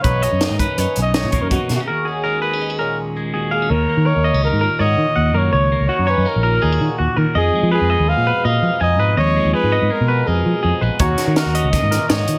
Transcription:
0.02 B1 B2 D#4 B4 C#5, kick, closed hi-hat
0.22 C#4 D#5, closed hi-hat
0.32 F#2
0.41 D#3 A#3, snare, closed hi-hat
0.50 G#2
0.59 C#4 B4, kick, closed hi-hat
0.77 F#2 D#4 B4 C#5, closed hi-hat
0.96 B1 F#2 C#4, closed hi-hat
1.02 D#5
1.14 C#5 D#5, snare, closed hi-hat
1.24 B2
1.32 A#3 C#5, kick, closed hi-hat
1.42 F#2 A#4
1.50 B2 D#4 F#4, kick, closed hi-hat
1.69 B2 A#3, snare, closed hi-hat
1.76 F#4
1.80 C#4
1.87 D#2 F#4 G#4 A#4
2.05 C#4 G#4
2.24 D#3 G#3 A#4
2.42 A#3 B4
2.54 C#4
2.62 D#4
2.70 F#4
2.79 A#2 C#4 A#4
3.17 G#3
3.34 D#2 F#4 G#4
3.51 A#3 G#4 F5
3.62 C#4
3.70 D#2 A#4 C#5
3.89 A#3
3.97 D#3
4.05 D#3 A#4 C#5
4.16 D#2
4.24 A#3 D#5
4.34 C#2 C#4
4.44 A#3 A#4
4.53 G#2
4.61 A#2 A#4
4.79 G#2 F#4 C#5 D#5
4.98 D#3
5.16 D#2 F#5
5.34 F#2 A#3 A#4 C#5
5.53 C#2 D#2 C#5
5.72 A#3
5.80 C#2
5.89 D#3 F#4
5.99 F#2
6.07 C#4 B4 C#5
6.18 F#2
6.26 A#3 A#4
6.36 A#1
6.43 A#2 A#4
6.62 D#2 D#4 G#4
6.72 F#4
6.81 D#3
6.98 D#2 F#4
7.16 D#2 D#3 A#4
7.35 F2 G#4 D#5
7.55 G#3
7.63 F3
7.72 F3 G#4 B4
7.81 F2
7.90 B3 D#5
8.00 D#2
8.09 G#3 F5
8.17 A#2
8.26 B2 B4
8.45 A#2 D#4 D#5 F5
8.62 F3
8.81 F2 D#5 G#5
8.99 G#2 G#3 B4
9.17 D#2 F2 C#5 D#5
9.36 G#3
9.45 D#2
9.53 F3 G#4 B4
9.64 G#2
9.72 B3 D#5
9.82 G#2
9.90 G#3 A#4
10.01 B2
10.08 B2 B4
10.27 F2 D#4 G#4 A#4
10.46 F3
10.63 F2 G#4
10.81 A#1 G#3 B4
10.99 D#2 D#3 A#3 C#4 F#4 C#5, kick, closed hi-hat
11.18 A#3, snare, closed hi-hat
11.27 D#3
11.36 D#3 F#4 A#4, snare, closed hi-hat
11.46 D#2
11.55 C#4 D#5, closed hi-hat
11.64 C#2
11.71 A#3 D#5, kick, snare, closed hi-hat
11.83 G#2
11.90 A#2 A#4, snare, closed hi-hat
12.08 G#2 D#4 C#5 D#5, snare, closed hi-hat
12.18 F#4
12.28 D#3, closed hi-hat

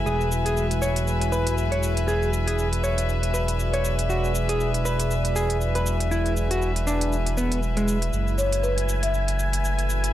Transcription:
Already playing: E4 F#4 G#4 B4 E5 G#5
0.06 E1 G#4 D5, cabasa
0.21 cabasa
0.32 cabasa
0.46 G#4, closed hi-hat, cabasa
0.57 cabasa
0.71 closed hi-hat, cabasa
0.82 C#5, cabasa
0.96 closed hi-hat, cabasa
1.07 cabasa
1.21 closed hi-hat, cabasa
1.32 B4, cabasa
1.47 closed hi-hat, cabasa
1.58 cabasa
1.72 C#5, closed hi-hat, cabasa
1.83 cabasa
1.97 closed hi-hat, cabasa
2.08 G#4, cabasa
2.23 cabasa
2.33 cabasa
2.47 G#4, closed hi-hat, cabasa
2.59 cabasa
2.73 closed hi-hat, cabasa
2.83 C#5, cabasa
2.98 closed hi-hat, cabasa
3.09 cabasa
3.23 closed hi-hat, cabasa
3.34 B4, cabasa
3.48 closed hi-hat, cabasa
3.59 cabasa
3.73 C#5, closed hi-hat, cabasa
3.85 cabasa
3.99 closed hi-hat, cabasa
4.10 F#4, cabasa
4.24 cabasa
4.35 cabasa
4.49 G#4, closed hi-hat, cabasa
4.60 cabasa
4.74 closed hi-hat, cabasa
4.85 B4, cabasa
5.00 closed hi-hat, cabasa
5.11 cabasa
5.25 closed hi-hat, cabasa
5.36 G#4, cabasa
5.50 closed hi-hat, cabasa
5.61 cabasa
5.75 B4, closed hi-hat, cabasa
5.86 cabasa
6.00 closed hi-hat, cabasa
6.11 E4, cabasa
6.26 closed hi-hat, cabasa
6.37 cabasa
6.51 F#4, closed hi-hat, cabasa
6.62 cabasa
6.76 closed hi-hat, cabasa
6.87 D4, cabasa
7.01 closed hi-hat, cabasa
7.12 cabasa
7.26 closed hi-hat, cabasa
7.37 B3, cabasa
7.52 closed hi-hat, cabasa
7.63 cabasa
7.77 G#3, closed hi-hat, cabasa
7.88 cabasa
8.02 closed hi-hat, cabasa
8.13 F#1 A3 E4 F#4 A4 G#6, cabasa
8.28 cabasa
8.38 C#5, cabasa
8.53 closed hi-hat, cabasa
8.63 B4, cabasa
8.73 G#5
8.78 closed hi-hat, cabasa
8.89 cabasa
9.03 E5, closed hi-hat, cabasa
9.14 cabasa
9.28 closed hi-hat, cabasa
9.39 cabasa
9.53 closed hi-hat, cabasa
9.65 cabasa
9.79 closed hi-hat, cabasa
9.90 cabasa
10.04 closed hi-hat, cabasa

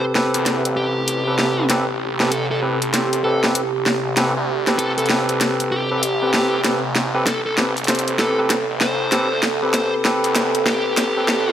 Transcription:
Already playing: C3 C4 G4 A4 B4
0.15 C4 G4 A4 B4, snare
0.34 E2, closed hi-hat
0.46 snare, closed hi-hat
0.65 A1, closed hi-hat
0.77 G4
1.08 A1, closed hi-hat
1.27 C4 G4 A4 B4
1.39 snare
1.59 A1
1.70 A1 C4 G4 A4 B4, snare, closed hi-hat
2.20 C4 G4 A4 B4, snare
2.31 A1 A4, closed hi-hat
2.51 A1 A4
2.62 C4 G4 A4 B4
2.82 closed hi-hat
2.93 C4 G4 A4 C5, snare, closed hi-hat
3.13 A1, closed hi-hat
3.24 A1 C4 G4 A4 B4
3.44 C4 G4 A4 B4, snare
3.55 closed hi-hat
3.75 A1
3.86 snare
4.17 C4 G4 A4 B4, snare, closed hi-hat
4.37 D2
4.67 C4 G4 A4 B4, snare, closed hi-hat
4.79 A1 A4, closed hi-hat
4.98 A1 A4, closed hi-hat
5.06 snare, closed hi-hat
5.10 C4 G4 A4 B4
5.29 C2, closed hi-hat
5.41 snare, closed hi-hat
5.60 G1, closed hi-hat
5.72 G4
5.91 A1 C4 G4 A4 B4
6.03 closed hi-hat
6.22 C4 G4 A4 B4
6.34 C4 G4 A4 B4, snare
6.53 E2
6.64 A1 C4 G4 A4 B4, snare, closed hi-hat
6.96 snare
7.15 C4 G4 A4 B4
7.27 A1 A4, snare, closed hi-hat
7.46 A1 A4
7.57 C4 G4 A4 B4, snare
7.77 closed hi-hat
7.84 snare, closed hi-hat
7.88 C4 G4 A4 C5, closed hi-hat
7.95 closed hi-hat
7.99 closed hi-hat
8.08 A1, closed hi-hat
8.19 A1 C4 G4 A4 B4, snare
8.39 C4 G4 A4 B4
8.50 snare, closed hi-hat
8.70 A1
8.81 C5, snare
9.12 C4 G4 A4 B4, snare, closed hi-hat
9.31 D2
9.43 snare
9.63 C4 G4 A4 B4
9.74 A1 C5, snare, closed hi-hat
10.05 C4 G4 A4 B4, snare
10.24 E2, closed hi-hat
10.36 snare, closed hi-hat
10.55 A1, closed hi-hat
10.67 G4, snare
10.97 A1, snare, closed hi-hat
11.17 C4 G4 A4 B4
11.28 snare

